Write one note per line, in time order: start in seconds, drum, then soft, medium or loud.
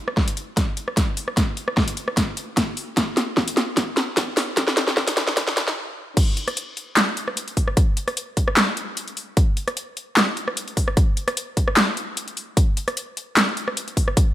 0.08 cross-stick medium
0.17 kick loud
0.17 snare medium
0.28 closed hi-hat medium
0.37 closed hi-hat medium
0.57 kick loud
0.57 snare medium
0.57 closed hi-hat medium
0.77 closed hi-hat medium
0.88 cross-stick soft
0.97 kick loud
0.97 snare medium
0.97 closed hi-hat medium
1.17 open hi-hat loud
1.28 cross-stick soft
1.37 kick medium
1.37 snare medium
1.37 closed hi-hat medium
1.57 closed hi-hat medium
1.68 cross-stick medium
1.77 kick loud
1.77 snare medium
1.88 closed hi-hat medium
1.97 closed hi-hat medium
2.08 cross-stick medium
2.17 kick loud
2.17 snare medium
2.17 closed hi-hat medium
2.37 closed hi-hat medium
2.57 kick medium
2.57 snare medium
2.57 closed hi-hat medium
2.77 open hi-hat medium
2.97 kick loud
2.97 snare medium
2.97 closed hi-hat medium
3.17 snare medium
3.17 closed hi-hat medium
3.37 kick loud
3.37 snare medium
3.48 closed hi-hat medium
3.57 snare medium
3.57 closed hi-hat medium
3.77 kick loud
3.77 snare medium
3.77 closed hi-hat medium
3.97 snare medium
3.97 closed hi-hat soft
4.17 kick loud
4.17 snare medium
4.17 closed hi-hat medium
4.37 snare loud
4.37 open hi-hat medium
4.57 kick loud
4.57 snare medium
4.57 closed hi-hat medium
4.68 snare medium
4.77 snare loud
4.77 closed hi-hat medium
4.88 snare medium
4.97 kick loud
4.97 snare loud
5.08 snare medium
5.08 closed hi-hat medium
5.17 snare loud
5.17 closed hi-hat medium
5.28 snare medium
5.37 kick loud
5.37 snare loud
5.37 closed hi-hat medium
5.48 snare medium
5.57 snare loud
5.57 closed hi-hat soft
5.68 snare medium
6.17 kick loud
6.17 closed hi-hat medium
6.17 crash loud
6.37 closed hi-hat medium
6.48 cross-stick medium
6.48 closed hi-hat soft
6.57 closed hi-hat medium
6.77 closed hi-hat medium
6.97 snare loud
6.97 clap medium
6.97 closed hi-hat medium
7.17 closed hi-hat medium
7.28 cross-stick medium
7.37 closed hi-hat medium
7.48 closed hi-hat soft
7.57 kick medium
7.57 open hi-hat loud
7.68 cross-stick medium
7.77 kick loud
7.77 closed hi-hat medium
7.97 closed hi-hat medium
8.08 cross-stick medium
8.08 closed hi-hat soft
8.17 closed hi-hat medium
8.37 kick medium
8.37 closed hi-hat medium
8.48 cross-stick medium
8.57 snare loud
8.57 clap medium
8.57 closed hi-hat medium
8.77 closed hi-hat medium
8.97 closed hi-hat medium
9.08 closed hi-hat soft
9.17 open hi-hat medium
9.37 kick loud
9.37 closed hi-hat medium
9.57 closed hi-hat medium
9.68 cross-stick medium
9.68 closed hi-hat soft
9.77 closed hi-hat medium
9.97 closed hi-hat medium
10.17 snare loud
10.17 clap medium
10.17 closed hi-hat medium
10.37 closed hi-hat medium
10.48 cross-stick medium
10.57 closed hi-hat medium
10.68 closed hi-hat soft
10.77 kick medium
10.77 open hi-hat medium
10.88 cross-stick medium
10.97 kick loud
10.97 closed hi-hat medium
11.17 closed hi-hat medium
11.28 cross-stick medium
11.28 closed hi-hat soft
11.37 closed hi-hat medium
11.57 kick medium
11.57 closed hi-hat medium
11.68 cross-stick medium
11.77 snare loud
11.77 clap medium
11.77 closed hi-hat medium
11.97 closed hi-hat soft
12.17 closed hi-hat medium
12.28 closed hi-hat soft
12.37 open hi-hat loud
12.57 kick loud
12.57 closed hi-hat medium
12.77 closed hi-hat medium
12.88 cross-stick medium
12.88 closed hi-hat soft
12.97 closed hi-hat medium
13.17 closed hi-hat medium
13.37 snare loud
13.37 clap medium
13.37 closed hi-hat medium
13.57 closed hi-hat soft
13.68 cross-stick medium
13.77 closed hi-hat medium
13.88 closed hi-hat soft
13.97 kick medium
13.97 open hi-hat loud
14.08 cross-stick medium
14.17 kick loud
14.17 closed hi-hat medium